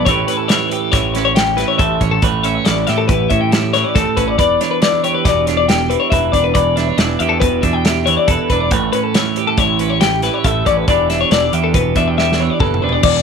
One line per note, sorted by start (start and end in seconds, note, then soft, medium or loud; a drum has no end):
0.05 0.24 A1 medium
0.05 1.77 A2 medium
0.05 0.50 E3 medium
0.05 0.30 C#4 medium
0.05 0.27 C#5 medium
0.05 kick loud
0.05 closed hi-hat medium
0.10 0.72 G4 medium
0.10 1.79 B4 medium
0.28 1.16 C#4 medium
0.28 0.37 B4 medium
0.28 closed hi-hat medium
0.37 0.48 A4 medium
0.48 0.93 E3 medium
0.48 0.70 C#5 medium
0.48 snare medium
0.48 closed hi-hat medium
0.70 1.36 G4 medium
0.70 0.81 B4 medium
0.70 closed hi-hat medium
0.81 0.92 A4 medium
0.92 1.63 A1 medium
0.92 1.57 E3 medium
0.92 1.14 C#5 medium
0.92 kick medium
0.92 snare soft
0.92 closed hi-hat medium
1.14 2.00 C#4 medium
1.14 1.24 B4 medium
1.14 snare soft
1.14 closed hi-hat medium
1.25 1.35 C#5 medium
1.35 2.26 G4 medium
1.35 1.58 G5 medium
1.35 snare loud
1.35 closed hi-hat medium
1.57 2.65 E3 medium
1.57 1.68 B4 medium
1.57 snare soft
1.57 closed hi-hat medium
1.68 1.78 C#5 medium
1.78 1.97 A1 medium
1.78 2.20 A2 medium
1.78 2.20 A4 medium
1.78 2.00 E5 medium
1.78 kick loud
1.78 closed hi-hat medium
2.00 2.18 A1 medium
2.00 2.20 C#4 medium
2.00 2.12 C#5 medium
2.00 kick medium
2.00 closed hi-hat soft
2.11 2.22 A4 medium
2.22 2.58 A1 medium
2.22 3.95 A2 medium
2.22 3.96 B4 medium
2.22 2.43 C#5 medium
2.22 kick loud
2.22 closed hi-hat medium
2.43 3.30 C#4 medium
2.43 2.55 E5 medium
2.43 closed hi-hat medium
2.55 2.65 C#5 medium
2.65 2.84 A1 medium
2.65 3.10 E3 medium
2.65 2.87 D5 medium
2.65 snare loud
2.65 closed hi-hat medium
2.87 3.11 A2 medium
2.87 3.53 G4 medium
2.87 2.98 E5 medium
2.87 snare soft
2.87 closed hi-hat medium
2.98 3.07 A4 medium
3.08 3.27 A1 medium
3.08 3.74 E3 medium
3.08 3.30 B4 medium
3.08 kick loud
3.08 closed hi-hat medium
3.30 3.83 A2 medium
3.30 4.17 C#4 medium
3.30 3.40 E5 medium
3.30 kick medium
3.30 closed hi-hat medium
3.41 3.52 G5 medium
3.52 5.04 G4 medium
3.52 3.73 E5 medium
3.52 snare loud
3.52 closed hi-hat medium
3.73 4.82 E3 medium
3.73 3.84 C#5 medium
3.73 snare soft
3.73 closed hi-hat medium
3.84 3.95 D5 medium
3.95 4.04 A1 medium
3.95 4.37 A2 medium
3.95 4.17 A4 medium
3.95 4.37 A4 soft
3.95 kick loud
3.95 snare soft
3.95 closed hi-hat medium
4.17 4.39 A1 medium
4.17 4.37 C#4 medium
4.17 4.28 B4 medium
4.17 kick medium
4.17 closed hi-hat medium
4.28 4.37 D5 medium
4.38 4.56 E1 medium
4.38 6.11 E2 medium
4.38 6.13 B4 medium
4.38 4.61 D5 medium
4.38 kick loud
4.38 closed hi-hat medium
4.61 5.48 D4 medium
4.61 4.71 C#5 medium
4.61 snare soft
4.61 closed hi-hat medium
4.71 4.82 B4 medium
4.82 5.90 E3 medium
4.82 5.03 D5 medium
4.82 snare loud
4.82 closed hi-hat medium
5.04 5.69 G4 medium
5.04 5.14 C#5 medium
5.04 closed hi-hat medium
5.14 5.25 B4 medium
5.25 5.95 E1 medium
5.25 5.90 B2 medium
5.25 5.46 D5 medium
5.25 kick loud
5.25 snare soft
5.25 closed hi-hat medium
5.46 6.33 D4 medium
5.46 5.57 C#5 medium
5.46 snare soft
5.46 closed hi-hat medium
5.57 5.68 D5 medium
5.68 7.22 G4 medium
5.68 5.90 G5 medium
5.68 snare loud
5.68 closed hi-hat medium
5.90 6.99 E3 medium
5.90 6.01 B4 medium
5.90 closed hi-hat soft
6.00 6.10 C#5 medium
6.10 6.30 E1 medium
6.10 6.55 E2 medium
6.10 6.56 B4 medium
6.10 6.32 E5 medium
6.10 kick loud
6.10 closed hi-hat medium
6.32 6.51 E1 medium
6.32 6.53 D4 medium
6.32 6.44 D5 medium
6.32 kick medium
6.32 closed hi-hat medium
6.44 6.55 B4 medium
6.54 6.91 E1 medium
6.54 8.28 E2 medium
6.54 8.30 B4 medium
6.54 6.76 D5 medium
6.54 kick loud
6.54 closed hi-hat medium
6.76 7.63 D4 medium
6.76 6.87 E5 medium
6.76 snare soft
6.76 closed hi-hat medium
6.87 6.98 C#5 medium
6.98 7.16 E1 medium
6.98 8.07 E3 medium
6.98 7.19 D5 medium
6.98 snare medium
6.98 closed hi-hat medium
7.19 7.43 E2 medium
7.19 7.86 G4 medium
7.19 7.30 E5 medium
7.19 closed hi-hat medium
7.29 7.40 A4 medium
7.40 7.59 E1 medium
7.40 8.07 B2 medium
7.40 7.63 B4 medium
7.40 kick loud
7.40 closed hi-hat medium
7.62 8.16 E2 medium
7.62 8.50 D4 medium
7.62 7.73 E5 medium
7.62 kick medium
7.62 closed hi-hat medium
7.73 7.85 G5 medium
7.85 8.76 G4 medium
7.85 8.05 E5 medium
7.85 snare loud
7.85 closed hi-hat medium
8.06 9.15 E3 medium
8.06 8.17 C#5 medium
8.06 closed hi-hat medium
8.17 8.28 D5 medium
8.28 8.37 E1 medium
8.28 8.72 E2 medium
8.28 8.50 A4 medium
8.28 8.73 B4 medium
8.28 kick loud
8.28 closed hi-hat medium
8.50 8.71 E1 medium
8.50 8.70 D4 medium
8.50 8.60 B4 medium
8.50 kick medium
8.50 closed hi-hat medium
8.60 8.71 D5 medium
8.71 8.89 A1 medium
8.71 10.43 A2 medium
8.71 10.45 B4 medium
8.71 8.92 C#5 medium
8.71 kick loud
8.71 closed hi-hat medium
8.93 9.80 C#4 medium
8.93 9.04 B4 medium
8.93 closed hi-hat medium
9.04 9.15 A4 medium
9.14 9.59 E3 medium
9.14 9.37 C#5 medium
9.14 snare loud
9.14 closed hi-hat medium
9.36 10.02 G4 medium
9.36 9.47 B4 medium
9.36 closed hi-hat medium
9.47 9.58 A4 medium
9.57 10.28 A1 medium
9.57 10.23 E3 medium
9.57 9.79 C#5 medium
9.57 kick loud
9.57 closed hi-hat medium
9.79 10.66 C#4 medium
9.79 9.90 B4 medium
9.79 closed hi-hat medium
9.90 10.00 C#5 medium
10.01 10.90 G4 medium
10.01 10.23 G5 medium
10.01 snare medium
10.01 closed hi-hat medium
10.22 10.88 E3 medium
10.22 10.34 B4 medium
10.22 snare soft
10.22 closed hi-hat soft
10.34 10.44 C#5 medium
10.44 10.62 A1 medium
10.44 10.85 A2 medium
10.44 10.86 A4 medium
10.44 10.66 E5 medium
10.44 kick medium
10.44 closed hi-hat medium
10.66 10.84 A1 medium
10.66 10.86 C#4 medium
10.66 10.77 D5 medium
10.66 kick medium
10.66 closed hi-hat medium
10.77 10.88 B4 medium
10.88 11.23 E1 medium
10.88 12.60 E2 medium
10.88 11.30 E3 medium
10.88 11.09 D4 medium
10.88 11.52 G4 medium
10.88 12.61 B4 medium
10.88 11.10 D5 medium
10.88 kick loud
10.88 closed hi-hat medium
11.10 11.96 D4 medium
11.10 11.20 E5 medium
11.10 snare soft
11.10 closed hi-hat medium
11.21 11.31 C#5 medium
11.31 11.49 E1 medium
11.31 12.39 E3 medium
11.31 11.53 D5 medium
11.31 snare medium
11.31 closed hi-hat medium
11.53 11.76 E2 medium
11.53 12.18 G4 medium
11.53 11.64 E5 medium
11.53 closed hi-hat medium
11.64 11.75 A4 medium
11.74 11.92 E1 medium
11.74 12.40 B2 medium
11.74 11.96 B4 medium
11.74 kick loud
11.74 closed hi-hat medium
11.96 12.48 E2 medium
11.96 12.83 D4 medium
11.96 12.08 E5 medium
11.96 kick medium
11.96 closed hi-hat medium
12.08 12.18 G5 medium
12.18 13.03 G4 medium
12.18 12.40 E5 medium
12.18 snare medium
12.32 snare soft
12.40 13.22 E3 medium
12.40 12.50 C#5 medium
12.50 12.60 D5 medium
12.60 12.80 F#1 medium
12.60 13.03 E2 medium
12.60 12.82 A4 medium
12.60 13.02 B4 soft
12.60 kick loud
12.60 mid tom medium
12.74 mid tom medium
12.82 13.02 E1 medium
12.82 13.02 D4 medium
12.82 12.93 B4 medium
12.89 13.02 D5 medium
12.89 floor tom medium
13.03 13.21 E1 medium
13.03 13.22 E2 medium
13.03 13.22 D5 medium
13.03 kick loud
13.03 crash loud